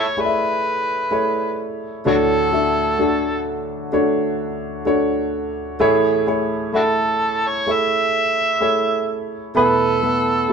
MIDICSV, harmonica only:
0, 0, Header, 1, 2, 480
1, 0, Start_track
1, 0, Key_signature, 3, "major"
1, 0, Tempo, 937500
1, 1051, Time_signature, 4, 2, 24, 8
1, 5390, End_track
2, 0, Start_track
2, 0, Title_t, "Harmonica"
2, 0, Program_c, 0, 22
2, 0, Note_on_c, 0, 73, 67
2, 107, Note_on_c, 0, 71, 69
2, 115, Note_off_c, 0, 73, 0
2, 819, Note_off_c, 0, 71, 0
2, 1063, Note_on_c, 0, 62, 60
2, 1063, Note_on_c, 0, 66, 60
2, 1063, Note_on_c, 0, 69, 86
2, 1101, Note_off_c, 0, 62, 0
2, 1103, Note_off_c, 0, 66, 0
2, 1756, Note_off_c, 0, 69, 0
2, 3457, Note_on_c, 0, 62, 47
2, 3457, Note_on_c, 0, 66, 47
2, 3457, Note_on_c, 0, 69, 67
2, 3491, Note_off_c, 0, 66, 0
2, 3495, Note_off_c, 0, 62, 0
2, 3829, Note_on_c, 0, 73, 77
2, 3837, Note_off_c, 0, 69, 0
2, 3955, Note_on_c, 0, 76, 86
2, 3962, Note_off_c, 0, 73, 0
2, 4663, Note_off_c, 0, 76, 0
2, 4898, Note_on_c, 0, 69, 93
2, 5390, Note_off_c, 0, 69, 0
2, 5390, End_track
0, 0, End_of_file